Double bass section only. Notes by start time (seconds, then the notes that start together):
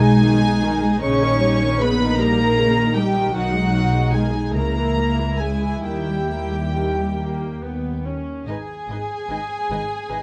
Already playing: B1
1.03 A#1
3.34 B1
4.55 C#2
5.84 D#2
8.46 G#1
8.87 G#1
9.29 G#1
9.70 G#1
10.10 G#1